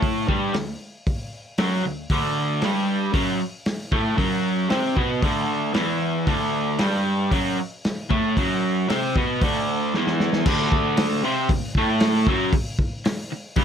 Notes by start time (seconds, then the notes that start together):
Already playing: A2 A3
0.02 kick, open hi-hat
0.27 G2 G3, kick
0.54 D2, snare, open hi-hat
1.07 kick, open hi-hat
1.58 F#2 F#3, snare, open hi-hat
1.85 D2
2.10 D2 D3, kick, open hi-hat
2.62 G2 G3, snare, open hi-hat
3.13 F#2 F#3, kick, open hi-hat
3.66 snare, open hi-hat
3.92 A2 A3, kick
4.17 F#2 F#3, kick, open hi-hat
4.70 C3 C4, snare, open hi-hat
4.96 B2 B3, kick
5.22 D2 D3, kick, open hi-hat
5.74 E2 E3, snare, open hi-hat
6.27 D2 D3, kick, open hi-hat
6.79 G2 G3, snare, open hi-hat
7.31 F#2 F#3, kick, open hi-hat
7.84 snare, open hi-hat
8.09 A2 A3, kick
8.37 F#2 F#3, kick, open hi-hat
8.89 C3 C4, snare, open hi-hat
9.16 B2 B3, kick
9.41 D2 D3, kick, open hi-hat
9.94 E2 E3, snare
10.07 snare
10.20 snare
10.33 snare
10.46 D2 D3, kick, crash
10.72 kick
10.97 snare, open hi-hat
11.24 C3 C4
11.49 D2, kick, open hi-hat
11.75 A2 A3, kick
12.00 snare, open hi-hat
12.27 F#2 F#3, kick
12.53 kick, open hi-hat
12.79 kick
13.05 muted overdriven electric guitar stroke, snare, open hi-hat
13.32 muted overdriven electric guitar stroke
13.56 G2 G3, kick, open hi-hat